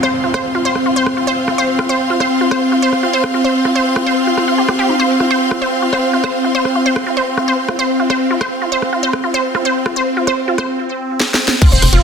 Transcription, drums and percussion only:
0.03 cross-stick
0.34 cross-stick
0.75 cross-stick
1.06 cross-stick
1.48 cross-stick
1.79 cross-stick
2.20 cross-stick
2.51 cross-stick
2.93 cross-stick
3.24 cross-stick
3.65 cross-stick
3.96 cross-stick
4.38 cross-stick
4.69 cross-stick
5.20 cross-stick
5.51 cross-stick
5.93 cross-stick
6.24 cross-stick
6.65 cross-stick
6.96 cross-stick
7.38 cross-stick
7.69 cross-stick
8.10 cross-stick
8.41 cross-stick
8.82 cross-stick
9.13 cross-stick
9.55 cross-stick
9.86 cross-stick
10.27 cross-stick
10.58 cross-stick
11.20 snare
11.34 snare
11.48 snare
11.62 kick, closed hi-hat, ride, crash
11.72 closed hi-hat
11.82 cross-stick, open hi-hat, ride
11.93 closed hi-hat

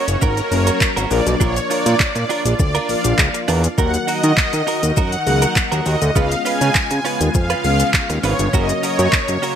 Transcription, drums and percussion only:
0.08 closed hi-hat, shaker
0.22 kick, shaker
0.37 closed hi-hat, shaker
0.52 open hi-hat, shaker
0.67 closed hi-hat, shaker
0.81 kick, clap, shaker
0.97 closed hi-hat, shaker
1.11 open hi-hat, shaker
1.27 closed hi-hat, shaker
1.41 kick, shaker
1.56 closed hi-hat, shaker
1.71 open hi-hat, shaker
1.86 closed hi-hat, shaker
2.00 kick, clap, shaker
2.16 closed hi-hat, shaker
2.30 open hi-hat, shaker
2.46 closed hi-hat, shaker
2.59 kick, shaker
2.75 closed hi-hat, shaker
2.89 open hi-hat, shaker
3.04 closed hi-hat, shaker
3.19 kick, clap, shaker
3.34 closed hi-hat, shaker
3.48 open hi-hat, shaker
3.64 closed hi-hat, shaker
3.78 kick, shaker
3.94 closed hi-hat, shaker
4.08 open hi-hat, shaker
4.24 closed hi-hat, shaker
4.37 kick, clap, shaker
4.53 closed hi-hat, shaker
4.67 open hi-hat, shaker
4.83 closed hi-hat, shaker
4.97 kick, shaker
5.12 closed hi-hat, shaker
5.27 open hi-hat, shaker
5.42 closed hi-hat, shaker
5.56 kick, clap, shaker
5.72 closed hi-hat, shaker
5.86 open hi-hat, shaker
6.02 closed hi-hat, shaker
6.16 kick, shaker
6.32 closed hi-hat, shaker
6.46 open hi-hat, shaker
6.61 closed hi-hat, shaker
6.75 kick, clap, shaker
6.91 closed hi-hat, shaker
7.05 open hi-hat, shaker
7.21 closed hi-hat, shaker
7.34 kick, shaker
7.50 closed hi-hat, shaker
7.64 open hi-hat, shaker
7.80 closed hi-hat, shaker
7.94 kick, clap, shaker
8.10 closed hi-hat, shaker
8.23 open hi-hat, shaker
8.39 closed hi-hat, shaker
8.53 kick, shaker
8.69 closed hi-hat, shaker
8.83 open hi-hat, shaker
8.99 closed hi-hat, shaker
9.13 kick, clap, shaker
9.28 closed hi-hat, shaker
9.43 open hi-hat, shaker

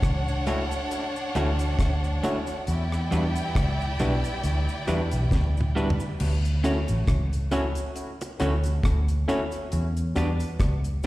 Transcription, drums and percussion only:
0.03 kick, cross-stick, closed hi-hat, cabasa
0.28 cabasa
0.47 closed hi-hat, cabasa
0.71 closed hi-hat, cabasa
0.91 closed hi-hat, cabasa
1.16 cabasa
1.35 closed hi-hat, cabasa
1.59 closed hi-hat, cabasa
1.79 kick, cross-stick, closed hi-hat, cabasa
2.04 cabasa
2.24 closed hi-hat, cabasa
2.47 closed hi-hat, cabasa
2.67 closed hi-hat, cabasa
2.92 cross-stick, cabasa
3.12 closed hi-hat, cabasa
3.36 closed hi-hat, cabasa
3.55 kick, cross-stick, closed hi-hat, cabasa
3.81 cabasa
3.99 closed hi-hat, cabasa
4.24 closed hi-hat, cabasa
4.44 closed hi-hat, cabasa
4.69 cabasa
4.88 closed hi-hat, cabasa
5.11 closed hi-hat, cabasa
5.31 kick, snare, cabasa
5.57 mid tom, cabasa
5.77 cabasa
5.90 floor tom
6.00 cabasa
6.20 crash, cabasa
6.45 closed hi-hat, cabasa
6.64 closed hi-hat, cabasa
6.88 closed hi-hat, cabasa
7.08 kick, cross-stick, closed hi-hat, cabasa
7.33 closed hi-hat, cabasa
7.51 closed hi-hat, cabasa
7.75 closed hi-hat, cabasa
7.96 closed hi-hat, cabasa
8.21 closed hi-hat, cabasa
8.40 closed hi-hat, cabasa
8.64 closed hi-hat, cabasa
8.83 kick, cross-stick, closed hi-hat, cabasa
9.08 closed hi-hat, cabasa
9.29 closed hi-hat, cabasa
9.51 closed hi-hat, cabasa
9.72 closed hi-hat, cabasa
9.97 closed hi-hat, cabasa
10.16 closed hi-hat, cabasa
10.40 closed hi-hat, cabasa
10.60 kick, cross-stick, closed hi-hat, cabasa
10.84 closed hi-hat, cabasa
11.03 cabasa

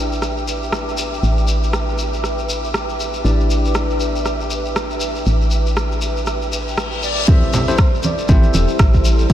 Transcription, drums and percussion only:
0.12 shekere
0.22 cross-stick, shekere
0.37 shekere
0.48 shekere
0.63 shekere
0.72 cross-stick, shekere
0.88 shekere
0.98 shekere
1.14 shekere
1.23 shekere
1.38 shekere
1.48 shekere
1.63 shekere
1.73 cross-stick, shekere
1.89 shekere
1.98 shekere
2.13 shekere
2.24 cross-stick, shekere
2.39 shekere
2.49 shekere
2.64 shekere
2.74 cross-stick, shekere
2.89 shekere
3.00 shekere
3.14 shekere
3.25 shekere
3.40 shekere
3.50 shekere
3.65 shekere
3.75 cross-stick, shekere
3.90 shekere
4.00 shekere
4.16 shekere
4.25 cross-stick, shekere
4.40 shekere
4.51 shekere
4.65 shekere
4.76 cross-stick, shekere
4.90 shekere
5.00 shekere
5.15 shekere
5.26 shekere
5.42 shekere
5.51 shekere
5.66 shekere
5.77 cross-stick, shekere
5.92 shekere
6.01 shekere
6.17 shekere
6.26 cross-stick, shekere
6.42 shekere
6.53 shekere
6.68 shekere
6.78 cross-stick, shekere
6.92 shekere
7.02 shekere
7.17 shekere
7.28 kick, muted conga, high conga, shekere
7.42 shekere
7.53 low conga, shekere
7.68 muted conga, high conga, shekere
7.78 kick, cross-stick, shekere
7.94 shekere
8.03 muted conga, high conga, shekere
8.18 shekere
8.28 kick, high conga, shekere
8.43 muted conga, shekere
8.54 high conga, shekere
8.68 shekere
8.79 kick, cross-stick, muted conga, shekere
8.94 kick, shekere
9.05 shekere
9.19 shekere
9.30 kick, shekere

